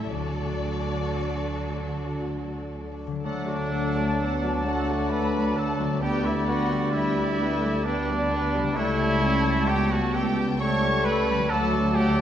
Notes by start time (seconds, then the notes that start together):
Already playing: A2 G3 C#4 G4 A4
0.08 D2 D3 F#3 F#4 D5
0.46 F#3
0.82 D4
1.17 A4
1.53 F#4
1.88 D5
2.22 F#4
2.57 A4
2.91 D4
3.07 D3
3.11 F#3 D4
3.20 D2 D4 A4 D5
3.24 F#3 A3 D4 A4 F#5 A5
3.47 F#3 F#4 D5
3.71 A3 A4 F#5
3.96 F#3 F#4 D5
4.19 A3 B3 A4 F#5
4.43 F#3 F#4 D5
4.64 A3 F#4 A4 F#5
4.89 F#3 F#4 D5
5.10 A3 A4 B4 F#5 B5
5.34 F#3 F#4 D5
5.55 A3 A4 F#5 A5
5.79 F#3 F#4 D5
5.84 D3
5.89 G3
5.93 B3
5.98 B3 B4 G5 B5
6.02 G3 B3 D4 G4 B4 D5
6.06 G5
6.23 G3 E4 G4 E5
6.31 D5
6.46 B3 F#4 B4 F#5
6.53 G5
6.72 G3 G4 D5
6.92 G3 B3 E4 B4 E5
6.97 G5
7.18 G3 G4 D5
7.40 A3 B3 B4 G5
7.63 G3 G4 D5
7.84 G3 B3 D4 B4 D5 B5
7.88 G5
8.08 G3 G4 D5
8.31 B3 B4 G5
8.55 C#3 G3 G4 D5
8.64 G3
8.68 E4
8.72 A3 E4 A4 C#5 E5
8.76 C#2 G3 A3 G5 A5
8.99 G3 G4 A5
9.22 A3 C#4 A4 G5
9.46 G3 G4 A5
9.67 A3 B3 G4 A4 G5
9.89 G3 F#4 G4 F#5 A5
10.14 A3 G4 A4 G5
10.37 G3 G4 A5
10.59 G3 A3 A4 C#5 G5 A5 C#6
10.82 G3 G4 A5
11.04 A3 A4 B4 G5 B5
11.28 G3 G4 A5
11.33 D3
11.38 F#3
11.43 D4
11.47 D2 F#3 A3 A4 D5 A5
11.51 F#3 F#5
11.73 F#3 F#4 A5
11.95 A3 G4 A4 F#5 G5
12.17 F#3 F#4 A5